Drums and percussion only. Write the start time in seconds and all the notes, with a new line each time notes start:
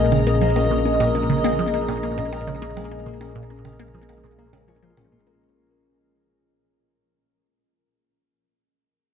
0.12 percussion blips, shaker
0.56 percussion blips, shaker
0.71 shaker
1.00 percussion blips
1.15 shaker
1.30 shaker
1.45 percussion blips
1.74 shaker
1.89 percussion blips, shaker
2.33 percussion blips, shaker
2.47 shaker
2.77 percussion blips
2.91 shaker
3.06 shaker
3.21 percussion blips
3.50 shaker
3.65 percussion blips, shaker
4.09 percussion blips, shaker
4.24 shaker
4.53 percussion blips
4.68 shaker
4.83 shaker
4.97 percussion blips
5.27 shaker